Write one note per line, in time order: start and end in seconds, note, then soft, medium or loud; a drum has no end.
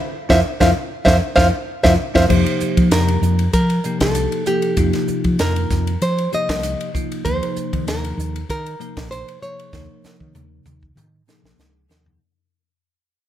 0.29 0.41 F2 medium
0.29 0.38 C4 medium
0.29 0.39 E4 medium
0.29 0.39 F4 medium
0.29 0.39 C5 medium
0.29 0.39 E5 medium
0.29 0.39 F5 medium
0.29 kick medium
0.29 snare medium
0.60 0.71 F2 medium
0.60 0.70 C4 medium
0.60 0.70 E4 medium
0.60 0.70 F4 medium
0.60 0.70 C5 medium
0.60 0.70 E5 medium
0.60 0.70 F5 medium
0.60 kick medium
0.60 snare medium
1.05 1.18 F2 medium
1.05 1.17 C4 medium
1.05 1.17 E4 medium
1.05 1.17 F4 medium
1.05 1.16 C5 medium
1.05 1.16 E5 medium
1.05 1.16 F5 medium
1.05 kick medium
1.05 snare medium
1.36 1.49 F2 medium
1.36 1.48 C4 medium
1.36 1.48 E4 medium
1.36 1.48 F4 medium
1.36 1.47 C5 medium
1.36 1.47 E5 medium
1.36 1.47 F5 medium
1.36 kick medium
1.36 snare medium
1.83 1.95 F2 medium
1.83 1.94 C4 medium
1.83 1.93 E4 medium
1.83 1.93 F4 medium
1.83 1.93 C5 medium
1.83 1.93 E5 medium
1.83 1.93 F5 medium
1.83 kick medium
1.83 snare medium
2.14 2.26 F2 medium
2.14 2.24 C4 medium
2.14 2.24 E4 medium
2.14 2.24 F4 medium
2.14 2.25 C5 medium
2.14 2.24 E5 medium
2.14 2.25 F5 medium
2.14 kick medium
2.14 snare medium
2.29 2.43 F2 medium
2.29 3.43 C3 medium
2.29 3.43 F3 medium
2.29 3.43 A#3 medium
2.29 3.43 D#4 medium
2.29 3.43 G4 medium
2.29 2.88 C5 medium
2.29 kick medium
2.29 crash medium
2.46 ride medium
2.60 muted fretless electric bass stroke soft
2.60 hi-hat pedal medium
2.77 2.89 F3 medium
2.77 kick medium
2.77 ride medium
2.91 3.16 F2 medium
2.91 3.52 A#4 medium
2.91 snare loud
2.91 hi-hat pedal medium
2.91 ride medium
3.08 ride medium
3.22 3.47 F2 medium
3.22 hi-hat pedal medium
3.39 ride medium
3.53 3.78 F3 medium
3.53 4.01 A#4 medium
3.53 kick medium
3.53 hi-hat pedal medium
3.53 ride medium
3.70 ride soft
3.84 4.41 C3 medium
3.84 4.42 F3 medium
3.84 4.42 A#3 medium
3.84 4.41 D#4 medium
3.84 4.42 G4 medium
3.84 hi-hat pedal medium
4.00 4.26 C2 medium
4.00 4.47 A4 medium
4.00 kick medium
4.00 snare loud
4.00 ride medium
4.15 hi-hat pedal medium
4.15 ride medium
4.32 ride soft
4.46 4.74 C3 medium
4.46 4.74 F3 medium
4.46 4.75 A#3 medium
4.46 4.75 D#4 soft
4.46 5.40 G4 medium
4.46 4.75 A4 medium
4.46 hi-hat pedal medium
4.62 ride medium
4.77 4.90 F2 medium
4.77 5.91 C3 medium
4.77 5.91 F3 medium
4.77 5.91 A#3 medium
4.77 5.91 D#4 medium
4.77 5.91 F4 medium
4.77 kick medium
4.77 hi-hat pedal medium
4.77 ride medium
4.93 snare soft
4.93 ride medium
5.08 muted fretless electric bass stroke soft
5.08 hi-hat pedal medium
5.24 5.36 F3 medium
5.24 kick medium
5.24 ride soft
5.39 5.64 F2 medium
5.39 6.03 A#4 medium
5.39 snare medium
5.39 hi-hat pedal medium
5.39 ride medium
5.56 ride medium
5.70 5.95 F2 medium
5.70 kick medium
5.70 snare soft
5.70 hi-hat pedal medium
5.87 ride medium
6.02 6.26 F3 medium
6.02 6.33 C5 medium
6.02 hi-hat pedal medium
6.02 ride medium
6.18 ride medium
6.32 6.89 C3 medium
6.32 6.89 F3 medium
6.32 6.89 A#3 medium
6.32 6.89 D#4 medium
6.32 6.89 G4 medium
6.32 6.91 D#5 medium
6.32 hi-hat pedal medium
6.49 6.74 C2 medium
6.49 kick medium
6.49 snare loud
6.49 ride medium
6.63 hi-hat pedal medium
6.63 ride medium
6.81 ride medium
6.93 7.22 C3 medium
6.93 7.22 F3 medium
6.93 7.22 A#3 medium
6.93 7.22 D#4 medium
6.93 7.22 F4 medium
6.93 kick medium
6.93 hi-hat pedal medium
7.12 ride medium
7.25 7.39 D#2 medium
7.25 8.38 C3 medium
7.25 8.38 F3 medium
7.25 8.39 A#3 medium
7.25 8.39 D#4 medium
7.25 8.39 G#4 medium
7.25 7.88 C5 medium
7.25 kick medium
7.25 hi-hat pedal medium
7.25 ride medium
7.43 ride medium
7.56 muted fretless electric bass stroke soft
7.56 hi-hat pedal medium
7.73 7.84 D#3 medium
7.73 kick medium
7.73 ride medium
7.87 8.12 D#2 medium
7.87 8.49 A#4 medium
7.87 snare loud
7.87 hi-hat pedal medium
7.87 ride medium
8.04 ride medium
8.17 8.43 D#2 medium
8.17 hi-hat pedal medium
8.36 ride medium
8.49 8.74 D#3 medium
8.49 9.11 A#4 medium
8.49 kick medium
8.49 hi-hat pedal medium
8.49 ride medium
8.66 ride soft
8.80 9.36 C3 medium
8.80 9.36 F3 medium
8.80 9.37 A#3 medium
8.80 9.37 D#4 medium
8.80 9.37 A#4 medium
8.80 hi-hat pedal medium
8.96 9.21 A#1 medium
8.96 kick medium
8.96 snare medium
8.96 ride medium
9.11 9.42 C5 medium
9.11 hi-hat pedal medium
9.11 ride medium
9.28 ride medium
9.42 9.70 C3 medium
9.42 9.70 F3 medium
9.42 9.70 A#3 soft
9.42 9.70 D#4 soft
9.42 9.70 G#4 medium
9.42 11.55 C#5 medium
9.42 hi-hat pedal medium
9.59 ride medium
9.73 9.86 D#2 medium
9.73 10.87 C3 medium
9.73 10.87 F3 medium
9.73 10.87 A#3 medium
9.73 10.87 D#4 medium
9.73 10.87 A#4 medium
9.73 kick medium
9.73 snare soft
9.73 hi-hat pedal medium
10.04 muted fretless electric bass stroke soft
10.04 snare soft
10.04 hi-hat pedal medium
10.20 10.32 D#3 medium
10.20 kick soft
10.34 10.60 D#2 medium
10.34 hi-hat pedal medium
10.34 mid tom medium
10.65 10.91 D#2 medium
10.65 hi-hat pedal medium
10.65 mid tom medium
10.83 kick medium
10.96 11.21 D#3 medium
10.96 hi-hat pedal medium
10.96 mid tom medium
11.28 11.85 C3 medium
11.28 11.85 F3 medium
11.28 11.85 A#3 medium
11.28 11.85 D#4 medium
11.28 11.85 G#4 medium
11.28 snare medium
11.28 hi-hat pedal medium
11.43 11.55 A#1 medium
11.43 snare medium
11.58 11.86 C#2 medium
11.58 snare medium
11.58 hi-hat pedal medium
11.89 12.18 D#2 medium
11.89 12.18 C3 medium
11.89 12.18 F3 medium
11.89 12.18 A#3 medium
11.89 12.18 D#4 medium
11.89 12.18 G#4 medium
11.89 snare medium
11.89 hi-hat pedal medium
12.06 floor tom medium